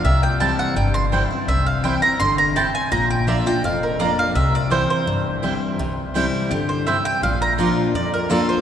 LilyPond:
<<
  \new Staff \with { instrumentName = "Mandolin" } { \time 4/4 \key c \mixolydian \tempo 4 = 167 e''8 g''8 a''8 fis''8 g''8 c'''8 r4 | e''8 f''8 g''8 bes''8 c'''8 bes''8 a''8 aes''8 | bes''8 g''8 e''8 g''8 f''8 bes'8 d''8 f''8 | e''8 d''8 c''8 c''2~ c''16 r16 |
r2 g'8 c''8 e''8 g''8 | f''8 bes''8 r4 d''8 bes'8 a'8 c''8 | }
  \new Staff \with { instrumentName = "Mandolin" } { \time 4/4 \key c \mixolydian r4 <c' e' c'' g''>16 r4. r16 <c' e' c'' g''>16 r8. | r4 <c' e' c'' g''>16 r4. r16 <c' e' c'' g''>16 r8. | r4 <bes f' d'' bes''>16 r4. r16 <bes f' d'' bes''>16 r8. | r4 <c' e' c'' g''>16 r4. r16 <c' e' c'' g''>16 r8. |
r4 <c' e' c'' g''>16 r4. r16 <c' e' c'' g''>16 r8. | r4 <bes f' d'' bes''>16 r4. r16 <bes f' d'' bes''>16 r8. | }
  \new Staff \with { instrumentName = "Steel-string acoustic guitar" } { \clef bass \time 4/4 \key c \mixolydian << { r4 <e g c' e'>4 r4 <e g c' e'>8 <c' e'>8 | r4 <e g c' e'>8 <c' e'>8 r2 | r4 <f bes d' f'>8 <d' f'>8 r4 <f bes d' f'>4 | r4 <e g c' e'>4 r4 <e g c' e'>4 |
r4 <e g c' e'>4 r2 | r4 <f bes d' f'>4 r4 <f bes d' f'>4 | } \\ { c2 g,2 | c2 d4 c4 | bes,2 f,2 | c2 g,2 |
c2 d4 c4 | bes,2 f,2 | } >> }
  \new Staff \with { instrumentName = "Upright bass" } { \clef bass \time 4/4 \key c \mixolydian c,2 g,,2 | c,2 g,,2 | bes,,2 f,,2 | c,2 g,,2 |
c,2 g,2 | bes,,2 f,2 | }
>>